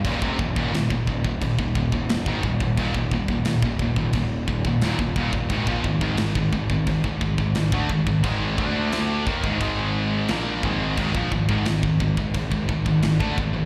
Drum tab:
CC |x---x---x---x---|x---x---x---x---|x---x---x---x---|x---x---x---x---|
SD |----o-------o---|----o-------o---|----o-------o---|----o-------o---|
BD |oooo-ooooooo-ooo|oooo-oooo-oo-ooo|oooo-ooooooo-ooo|o-o---ooo-----o-|

CC |x---x---x---x---|
SD |----o-------o---|
BD |oooo-ooooooo-oo-|